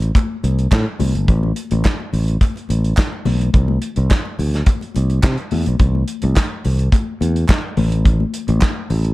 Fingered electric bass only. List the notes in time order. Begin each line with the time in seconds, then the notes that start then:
Already playing: A1
0.44 C2
0.72 A2
1.00 C2
1.15 G1
1.29 A1
1.72 A1
2.13 A1
2.70 A1
3.26 B1
3.54 C2
3.97 C2
4.39 D2
4.96 C2
5.23 C3
5.53 E2
5.67 B1
5.80 C2
6.24 C2
6.65 C2
7.21 E2
7.78 A1
8.49 A1
8.90 A1